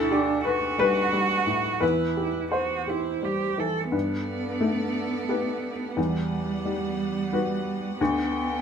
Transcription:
0.00 1.78 D2 medium
0.00 0.13 E4 medium
0.00 0.75 A4 medium
0.11 0.44 D4 medium
0.11 0.65 G4 soft
0.45 1.84 F#4 medium
0.45 0.78 B4 soft
0.78 1.11 G3 soft
0.78 1.78 B4 medium
1.13 1.68 G3 soft
1.47 1.82 A2 soft
1.80 3.89 E2 soft
1.80 2.46 E4 soft
1.80 2.48 B4 medium
2.17 2.74 G4 soft
2.52 2.91 F#4 soft
2.52 3.09 C5 soft
2.87 3.26 E4 soft
2.87 3.44 G4 soft
3.22 3.79 G3 soft
3.22 3.61 G4 soft
3.58 3.93 E3 soft
3.58 3.93 A4 soft
3.92 5.92 G2 soft
3.92 6.00 B3 soft
3.92 8.62 B3 soft
3.92 5.93 A4 soft
3.92 5.93 D5 soft
4.61 5.70 A3 soft
5.29 5.93 G4 soft
5.29 5.93 B4 soft
5.97 7.95 E2 soft
5.97 8.00 G3 soft
5.97 7.99 F#5 soft
6.65 7.73 G3 soft
7.33 7.96 F#4 soft
7.33 7.96 B4 soft
8.00 8.62 D2 medium
8.00 8.62 B3 soft
8.00 8.62 A4 soft
8.00 8.62 G5 soft

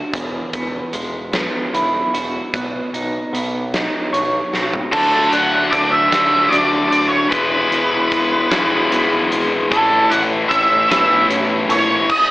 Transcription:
0.00 0.13 D3 medium
0.00 0.13 D4 medium
0.00 0.16 F#4 medium
0.00 0.13 A4 medium
0.13 0.39 E1 medium
0.13 2.13 E2 medium
0.13 kick loud
0.13 closed hi-hat medium
0.53 0.80 E1 medium
0.53 1.32 B3 medium
0.53 kick medium
0.53 closed hi-hat soft
0.93 1.46 E1 medium
0.93 2.53 G#3 medium
0.93 closed hi-hat medium
1.33 2.53 B3 medium
1.33 snare loud
1.33 closed hi-hat medium
1.73 1.99 E1 medium
1.73 2.53 E4 medium
1.73 closed hi-hat medium
2.13 2.39 E1 medium
2.13 4.53 F#4 medium
2.13 closed hi-hat medium
2.54 2.80 B1 medium
2.54 3.33 B3 medium
2.54 kick loud
2.54 closed hi-hat medium
2.94 3.20 B1 medium
2.94 3.73 D#4 medium
2.94 closed hi-hat soft
3.33 3.85 B1 medium
3.33 4.93 B3 medium
3.33 closed hi-hat medium
3.74 4.93 D#4 medium
3.74 snare medium
3.74 closed hi-hat medium
4.13 4.39 B1 medium
4.13 4.93 C#5 medium
4.13 closed hi-hat medium
4.53 4.80 B1 medium
4.53 4.93 F#4 medium
4.53 snare medium
4.73 floor tom medium
4.92 5.27 D2 medium
4.92 6.10 D3 medium
4.92 6.91 D3 medium
4.92 6.14 F#3 medium
4.92 6.11 A3 loud
4.92 6.10 D4 medium
4.92 5.34 A4 medium
4.92 kick medium
4.92 crash medium
5.32 5.66 D2 medium
5.32 5.71 D4 medium
5.32 5.73 F#5 loud
5.32 closed hi-hat medium
5.71 6.06 D2 medium
5.71 6.51 D4 medium
5.71 5.92 D5 medium
5.71 kick medium
5.71 closed hi-hat medium
5.91 6.53 E5 medium
6.11 6.46 D2 medium
6.11 7.29 D3 medium
6.11 7.31 F#3 medium
6.11 7.30 A3 medium
6.11 7.29 D4 medium
6.11 7.32 F#4 medium
6.11 snare medium
6.11 closed hi-hat medium
6.48 6.86 D2 medium
6.48 6.88 D5 medium
6.48 closed hi-hat medium
6.53 7.32 D4 medium
6.89 7.25 D2 medium
6.89 7.32 D3 medium
6.89 7.08 D5 medium
6.89 closed hi-hat medium
7.08 7.29 C#5 medium
7.29 7.66 E1 medium
7.29 9.32 E2 medium
7.29 8.54 E3 medium
7.29 8.49 G#3 medium
7.29 8.51 B3 medium
7.29 9.26 B4 medium
7.29 kick loud
7.29 closed hi-hat medium
7.34 8.50 E4 medium
7.72 8.05 E1 medium
7.72 9.71 E3 medium
7.72 closed hi-hat soft
8.12 8.45 E1 medium
8.12 8.91 B3 medium
8.12 kick medium
8.12 closed hi-hat medium
8.50 8.85 E1 medium
8.50 9.70 E3 medium
8.50 9.69 G#3 medium
8.50 9.72 B3 medium
8.50 9.68 E4 medium
8.50 9.71 F#4 medium
8.50 snare loud
8.50 closed hi-hat medium
8.92 9.25 E1 medium
8.92 9.74 B3 medium
8.92 closed hi-hat medium
9.31 9.65 G#1 medium
9.31 9.71 G#3 medium
9.31 closed hi-hat medium
9.69 10.05 A1 medium
9.69 10.87 A2 medium
9.69 11.70 A2 medium
9.69 10.88 E3 medium
9.69 10.89 A3 medium
9.69 10.88 C#4 medium
9.69 10.87 E4 loud
9.69 10.12 A4 medium
9.69 kick loud
9.69 closed hi-hat medium
10.10 10.44 A1 medium
10.10 11.68 A3 medium
10.10 10.21 F#5 loud
10.10 closed hi-hat medium
10.49 10.84 A1 medium
10.49 11.28 C#4 medium
10.49 11.25 E5 medium
10.49 kick medium
10.49 closed hi-hat medium
10.88 11.24 A1 medium
10.88 12.08 A2 medium
10.88 12.07 E3 medium
10.88 12.07 A3 medium
10.88 12.09 B3 medium
10.88 12.06 C#4 medium
10.88 12.06 E4 medium
10.88 snare loud
10.88 closed hi-hat medium
11.29 11.63 A1 medium
11.29 12.09 C#4 medium
11.29 closed hi-hat medium
11.69 12.03 A#1 medium
11.69 12.09 A3 medium
11.69 12.10 C#5 medium
11.69 closed hi-hat medium
12.10 12.31 D#5 loud
12.10 kick loud
12.10 crash medium

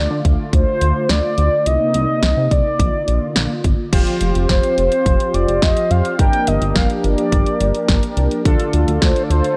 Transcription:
0.00 1.64 D3 medium
0.00 1.64 A3 medium
0.00 1.64 F4 medium
0.00 0.21 D5 loud
0.11 0.22 D3 loud
0.25 0.36 D2 medium
0.25 kick medium
0.25 closed hi-hat medium
0.53 0.64 D2 loud
0.53 1.11 C5 loud
0.53 kick medium
0.53 closed hi-hat medium
0.81 0.93 D2 medium
0.81 closed hi-hat medium
1.09 1.21 D2 loud
1.09 1.68 D5 loud
1.09 snare loud
1.09 closed hi-hat medium
1.38 1.49 D2 loud
1.38 closed hi-hat medium
1.66 1.78 C2 loud
1.66 2.78 C3 medium
1.66 3.90 A#3 medium
1.66 2.78 D#4 medium
1.66 2.53 D#5 loud
1.66 closed hi-hat medium
1.94 2.06 C2 medium
1.94 closed hi-hat medium
2.23 2.34 C2 loud
2.23 snare loud
2.23 closed hi-hat medium
2.37 2.48 C3 loud
2.51 2.62 C2 loud
2.51 3.64 D5 loud
2.51 kick medium
2.51 closed hi-hat medium
2.79 2.91 A#1 loud
2.79 3.92 D3 medium
2.79 3.92 F4 medium
2.79 kick medium
2.79 closed hi-hat medium
3.08 3.19 A#1 loud
3.08 closed hi-hat medium
3.36 3.47 A#1 loud
3.36 snare loud
3.36 closed hi-hat medium
3.64 3.76 G1 loud
3.64 kick medium
3.64 closed hi-hat medium
3.93 4.04 F1 loud
3.93 8.41 F3 medium
3.93 6.17 C4 medium
3.93 6.15 F4 medium
3.93 6.15 G4 medium
3.93 8.41 G4 medium
3.93 6.15 C5 medium
3.93 kick loud
3.93 closed hi-hat medium
3.93 crash medium
4.07 closed hi-hat medium
4.21 4.32 F1 loud
4.21 closed hi-hat medium
4.35 4.46 F1 loud
4.35 closed hi-hat medium
4.49 4.61 F1 loud
4.49 4.76 C5 medium
4.49 kick loud
4.49 snare loud
4.49 closed hi-hat medium
4.63 closed hi-hat soft
4.78 4.89 F1 loud
4.78 5.36 C5 loud
4.78 closed hi-hat medium
4.92 closed hi-hat medium
5.06 5.17 F1 loud
5.06 kick loud
5.06 closed hi-hat medium
5.20 closed hi-hat medium
5.34 5.45 F1 loud
5.34 5.64 D5 medium
5.34 closed hi-hat medium
5.48 5.60 F1 loud
5.48 closed hi-hat medium
5.62 5.74 F1 loud
5.62 5.92 D#5 loud
5.62 kick medium
5.62 snare loud
5.62 closed hi-hat medium
5.77 closed hi-hat soft
5.91 6.02 F2 medium
5.91 6.19 F5 loud
5.91 closed hi-hat medium
6.05 closed hi-hat soft
6.19 6.30 G1 loud
6.19 8.43 A#3 medium
6.19 8.41 D4 medium
6.19 8.41 G4 medium
6.19 8.41 A#4 medium
6.19 6.49 G5 loud
6.19 kick loud
6.19 closed hi-hat medium
6.33 closed hi-hat medium
6.47 6.59 G1 medium
6.47 6.75 D#5 loud
6.47 closed hi-hat medium
6.62 6.73 G1 medium
6.62 closed hi-hat medium
6.76 6.87 G1 loud
6.76 6.89 F5 loud
6.76 kick loud
6.76 snare loud
6.76 closed hi-hat medium
6.90 closed hi-hat medium
7.04 7.15 G1 loud
7.04 8.13 D5 loud
7.04 closed hi-hat medium
7.18 closed hi-hat medium
7.32 7.44 G1 loud
7.32 kick loud
7.32 closed hi-hat medium
7.46 closed hi-hat medium
7.61 7.72 G1 loud
7.61 closed hi-hat medium
7.75 closed hi-hat medium
7.88 8.00 G1 loud
7.88 kick medium
7.88 snare loud
7.88 closed hi-hat medium
8.03 closed hi-hat soft
8.17 8.28 C2 medium
8.17 closed hi-hat medium
8.31 closed hi-hat soft
8.45 8.57 D2 loud
8.45 9.57 D3 medium
8.45 9.57 A3 medium
8.45 9.57 D4 medium
8.45 9.57 F4 medium
8.45 9.57 A4 medium
8.45 kick loud
8.45 closed hi-hat medium
8.60 closed hi-hat medium
8.73 8.85 D2 loud
8.73 closed hi-hat medium
8.88 8.99 D2 medium
8.88 closed hi-hat medium
9.02 9.13 D2 loud
9.02 9.22 C5 medium
9.02 kick loud
9.02 snare loud
9.02 closed hi-hat medium
9.16 closed hi-hat medium
9.23 9.32 D5 medium
9.30 9.42 D2 loud
9.30 9.57 C5 loud
9.30 closed hi-hat medium
9.44 closed hi-hat medium

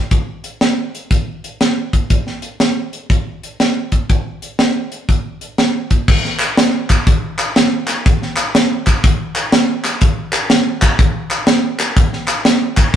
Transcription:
0.11 kick loud
0.11 closed hi-hat medium
0.44 closed hi-hat medium
0.61 snare loud
0.61 closed hi-hat medium
0.95 closed hi-hat medium
1.11 kick loud
1.11 closed hi-hat medium
1.44 closed hi-hat medium
1.61 snare medium
1.61 closed hi-hat medium
1.93 kick medium
1.93 closed hi-hat medium
2.10 kick loud
2.10 closed hi-hat medium
2.27 snare soft
2.42 closed hi-hat medium
2.60 snare medium
2.60 closed hi-hat medium
2.93 closed hi-hat medium
3.10 kick loud
3.10 closed hi-hat medium
3.43 closed hi-hat medium
3.60 snare medium
3.60 closed hi-hat medium
3.92 kick medium
3.92 closed hi-hat medium
4.09 kick loud
4.09 closed hi-hat medium
4.42 closed hi-hat medium
4.59 snare loud
4.59 closed hi-hat medium
4.92 closed hi-hat medium
5.09 kick loud
5.09 closed hi-hat medium
5.41 closed hi-hat medium
5.58 snare medium
5.58 closed hi-hat medium
5.91 kick medium
5.91 closed hi-hat medium
6.08 kick loud
6.08 crash loud
6.25 snare soft
6.39 clap loud
6.39 closed hi-hat medium
6.57 snare loud
6.57 closed hi-hat loud
6.90 kick medium
6.90 clap loud
6.90 closed hi-hat medium
7.07 kick loud
7.07 closed hi-hat medium
7.39 clap loud
7.39 closed hi-hat medium
7.56 snare loud
7.56 closed hi-hat medium
7.88 snare soft
7.88 clap medium
7.88 closed hi-hat medium
8.06 kick loud
8.06 closed hi-hat loud
8.22 snare soft
8.36 clap loud
8.36 closed hi-hat medium
8.55 snare loud
8.55 closed hi-hat loud
8.87 kick medium
8.87 clap loud
8.87 closed hi-hat medium
9.04 kick loud
9.04 closed hi-hat medium
9.36 clap loud
9.36 closed hi-hat medium
9.52 snare loud
9.52 closed hi-hat medium
9.84 snare soft
9.84 clap loud
9.84 closed hi-hat medium
10.01 kick loud
10.01 closed hi-hat loud
10.33 clap loud
10.33 closed hi-hat medium
10.50 snare loud
10.50 closed hi-hat loud
10.82 kick medium
10.82 clap loud
10.82 closed hi-hat medium
10.99 kick loud
10.99 closed hi-hat medium
11.31 clap medium
11.31 closed hi-hat medium
11.47 snare loud
11.47 closed hi-hat medium
11.79 snare soft
11.79 clap medium
11.79 closed hi-hat medium
11.97 kick loud
11.97 closed hi-hat loud
12.13 snare soft
12.28 clap loud
12.28 closed hi-hat medium
12.45 snare loud
12.45 closed hi-hat loud
12.77 kick medium
12.77 clap loud
12.77 closed hi-hat medium

